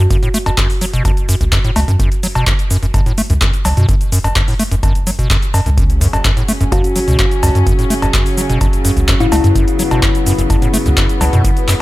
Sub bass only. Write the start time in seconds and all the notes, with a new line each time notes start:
0.46 F#1
0.93 F#1
1.17 F#1
1.41 C#2
1.76 C#2
1.88 F#2
2.35 F#1
2.83 F#1
3.06 F#1
3.30 C#2
3.65 C#2
3.77 F#2
4.24 F#1
4.71 F#1
4.95 F#1
5.66 C#2
6.13 F#1
6.61 F#1
6.84 F#1
7.08 C#2
7.43 C#2
7.55 F#2
8.02 F#1
8.49 F#1
8.73 F#1
8.97 C#2
9.32 C#2
9.44 F#2
9.91 F#1
10.38 F#1
10.62 F#1
10.86 C#2
11.21 C#2
11.33 F#2